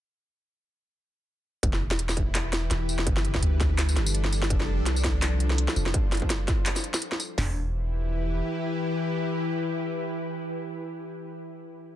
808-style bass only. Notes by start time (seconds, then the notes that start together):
1.63 E1
2.71 E1
3.07 G1
3.43 D2
3.97 G1
4.50 F1
4.79 C2
5.76 F1
7.38 E1